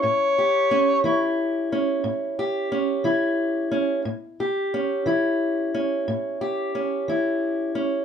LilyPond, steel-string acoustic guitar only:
\new Staff \with { instrumentName = "Steel-string acoustic guitar" } { \time 12/8 \key a \mixolydian \tempo 4. = 59 << { r8 g'8 cis'8 e'4 cis'4 g'8 cis'8 e'4 cis'8 | r8 g'8 cis'8 e'4 cis'4 g'8 cis'8 e'4 cis'8 | } \\ { a,4 r8 e4 r8 a,4 r8 e4 r8 | a,4 r8 e4 r8 a,4 r8 e4 r8 | } >> }